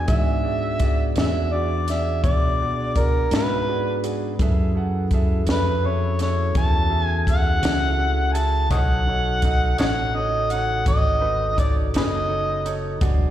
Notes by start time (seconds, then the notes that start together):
0.06 G#2 B3 D4 F#4 G#4 D5 E5, kick, closed hi-hat
0.43 F#4 G#4 D5
0.79 F#4 G#4 D5, kick, closed hi-hat
1.15 E2 F#4 G#4 D5, snare, closed hi-hat
1.19 E5
1.52 F#4 G#4 D5
1.88 F#4 G#4 D5 E5, snare, closed hi-hat
2.23 B2 F#4 G#4 D5, kick, closed hi-hat
2.62 F#4 G#4 D5
2.96 F#4 G#4 A#4 D5, kick, closed hi-hat
3.31 G#2 F#4 G#4 B4 E5, snare, closed hi-hat
3.67 F#4 G#4 D5
4.04 F#4 G#4 D5, closed hi-hat
4.39 F#2 C#4 E4 F#4 G#4 A4 E5, kick, closed hi-hat
4.75 G#4 A4 F#5
5.11 G#4 A4 E5, kick, closed hi-hat
5.47 F2, snare, closed hi-hat
5.51 G#4 A4 B4 E5
5.83 G#4 A4 C#5 E5
6.19 G#4 A4 C#5 E5, snare, closed hi-hat
6.55 E2 G#4 A4 E5 A5, kick, closed hi-hat
6.90 G#4 A4 E5
7.04 G#5
7.27 G#4 A4 E5 F#5, kick, closed hi-hat
7.62 C#2 G#4 A4 E5, snare, closed hi-hat
7.98 G#4 A4 E5
8.32 G#4 A4 E5 G#5 A5, closed hi-hat
8.71 B1 C#3 D#4 F#4 A4 C#5 D#5 F#5, kick, closed hi-hat
9.07 D#4 A4 C#5
9.42 D#4 A4 D#5, kick, closed hi-hat
9.78 A1 D#4 A4 C#5 D#5 F#5, snare, closed hi-hat
10.15 D#4 A4 C#5 D#5
10.50 D#4 A4 C#5 F#5, closed hi-hat
10.86 G#1 D#4 A4 C#5 D#5, kick, closed hi-hat
11.20 D#4 A4 B4
11.57 D#4 A4 C#5 D5, kick, closed hi-hat
11.94 F#1 D#4 G#4 A4 B4 C#5 D#5, snare, closed hi-hat
12.28 D#4 A4 C#5
12.65 D#4 A4 C#5, closed hi-hat
13.01 E1 F#3 B3 D4 F#4 G#4 D5, kick, closed hi-hat